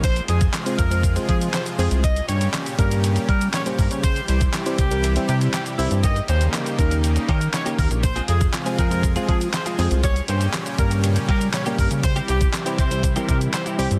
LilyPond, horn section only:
\new Staff \with { instrumentName = "Horn section" } { \time 4/4 \key f \minor \tempo 4 = 120 c''8 aes'8 r8 bes'8. r16 aes'16 r16 c''16 r16 aes'16 r16 | ees''8 des''8 r8 bes'8 r8 bes'8 des''16 r16 bes'16 r16 | c''8 c''8 r8 g'8. r16 g'16 r16 g'16 r16 e'16 r16 | ees''8 c''8 r8 bes'8 r8 bes'8 des''16 r16 bes'16 r16 |
c''8 aes'8 r8 bes'8. r16 aes'16 r16 c''16 r16 aes'16 r16 | des''8 c''8 r8 bes'8 r8 bes'8 des''16 r16 bes'16 r16 | c''8 g'8 r8 c''8. r16 bes'16 r16 c''16 r16 g'16 r16 | }